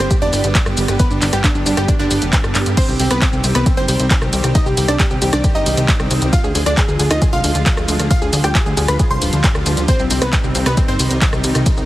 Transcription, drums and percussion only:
0.11 kick, closed hi-hat, shaker
0.22 shaker
0.33 open hi-hat, shaker
0.44 closed hi-hat, shaker
0.55 kick, clap, closed hi-hat, shaker
0.66 cross-stick, shaker
0.77 open hi-hat, shaker
0.88 cross-stick, closed hi-hat, shaker
0.99 kick, closed hi-hat, shaker
1.11 shaker
1.22 clap, open hi-hat, shaker
1.33 cross-stick, closed hi-hat, shaker
1.44 kick, clap, closed hi-hat, shaker
1.55 shaker
1.66 open hi-hat, shaker
1.77 cross-stick, closed hi-hat, shaker
1.88 kick, closed hi-hat, shaker
2.00 shaker
2.11 open hi-hat, shaker
2.22 closed hi-hat, shaker
2.33 kick, clap, closed hi-hat, shaker
2.44 cross-stick, shaker
2.55 clap, open hi-hat, shaker
2.66 closed hi-hat, shaker
2.77 kick, closed hi-hat, ride, crash, shaker
2.88 shaker
3.00 open hi-hat, ride, shaker
3.11 cross-stick, closed hi-hat, shaker
3.22 kick, clap, closed hi-hat, ride, shaker
3.33 shaker
3.44 open hi-hat, ride, shaker
3.55 cross-stick, closed hi-hat, shaker
3.66 kick, closed hi-hat, ride, shaker
3.77 shaker
3.88 open hi-hat, ride, shaker
4.00 closed hi-hat, shaker
4.11 kick, clap, closed hi-hat, ride, shaker
4.22 cross-stick, shaker
4.33 open hi-hat, ride, shaker
4.44 cross-stick, closed hi-hat, shaker
4.55 kick, closed hi-hat, ride, shaker
4.66 shaker
4.77 open hi-hat, ride, shaker
4.88 cross-stick, closed hi-hat, shaker
5.00 kick, clap, closed hi-hat, ride, shaker
5.11 shaker
5.22 open hi-hat, ride, shaker
5.33 cross-stick, closed hi-hat, shaker
5.44 kick, closed hi-hat, ride, shaker
5.55 shaker
5.66 open hi-hat, ride, shaker
5.77 closed hi-hat, shaker
5.88 kick, clap, closed hi-hat, ride, shaker
6.00 cross-stick, shaker
6.11 open hi-hat, ride, shaker
6.22 closed hi-hat, shaker
6.33 kick, closed hi-hat, ride, shaker
6.44 shaker
6.55 open hi-hat, ride, shaker
6.66 cross-stick, closed hi-hat, shaker
6.77 kick, clap, closed hi-hat, ride, shaker
6.88 shaker
7.00 open hi-hat, ride, shaker
7.11 cross-stick, closed hi-hat, shaker
7.22 kick, closed hi-hat, ride, shaker
7.33 shaker
7.44 open hi-hat, ride, shaker
7.55 closed hi-hat, shaker
7.66 kick, clap, closed hi-hat, ride, shaker
7.77 cross-stick, shaker
7.88 open hi-hat, ride, shaker
8.00 cross-stick, closed hi-hat, shaker
8.11 kick, closed hi-hat, ride, shaker
8.22 shaker
8.33 open hi-hat, ride, shaker
8.44 cross-stick, closed hi-hat, shaker
8.55 kick, clap, closed hi-hat, ride, shaker
8.66 shaker
8.77 open hi-hat, ride, shaker
8.88 cross-stick, closed hi-hat, shaker
8.99 kick, closed hi-hat, ride, shaker
9.11 shaker
9.22 open hi-hat, ride, shaker
9.33 closed hi-hat, shaker
9.44 kick, clap, closed hi-hat, ride, shaker
9.55 cross-stick, shaker
9.66 open hi-hat, ride, shaker
9.77 closed hi-hat, shaker
9.88 kick, closed hi-hat, ride, shaker
9.99 shaker
10.11 open hi-hat, ride, shaker
10.22 cross-stick, closed hi-hat, shaker
10.33 kick, clap, closed hi-hat, ride, shaker
10.44 shaker
10.55 open hi-hat, ride, shaker
10.66 cross-stick, closed hi-hat, shaker
10.77 kick, closed hi-hat, ride, shaker
10.88 shaker
10.99 open hi-hat, ride, shaker
11.11 closed hi-hat, shaker
11.22 kick, clap, closed hi-hat, ride, shaker
11.33 cross-stick, shaker
11.44 open hi-hat, ride, shaker
11.55 cross-stick, closed hi-hat, shaker
11.66 kick, closed hi-hat, ride, shaker
11.77 shaker

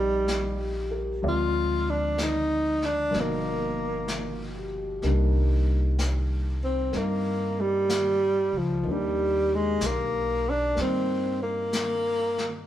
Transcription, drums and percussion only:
0.28 brush sweep, snare, hi-hat pedal
1.23 brush sweep
2.18 brush sweep, snare, hi-hat pedal
2.82 snare
3.13 brush sweep, snare
4.08 brush sweep, snare, hi-hat pedal
5.02 brush sweep, snare
5.98 brush sweep, snare, hi-hat pedal
6.93 brush sweep, snare
7.89 brush sweep, snare, hi-hat pedal
8.85 brush sweep
9.81 brush sweep, snare, hi-hat pedal
10.76 brush sweep, snare
11.73 brush sweep, snare, hi-hat pedal
12.38 snare

